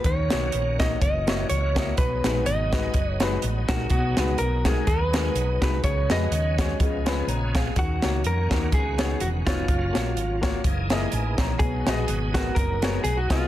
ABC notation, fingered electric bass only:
X:1
M:4/4
L:1/8
Q:"Swing" 1/4=125
K:F#
V:1 name="Fingered electric bass" clef=bass
D,, B,,, A,,,2 F,,,2 C,,2 | B,,, A,,, G,,,2 F,,,2 =A,,, z | B,,, C,, B,,,2 D,,2 B,,, ^B,,, | C,, E,, D,,2 C,,2 A,,,2 |
D,, C,, E,, D,, C,,2 =E,,, z | F,,, A,,, G,,,2 F,,,2 =A,,, ^A,,, | B,,, A,,, G,,,2 F,,,2 B,,, ^B,,, |]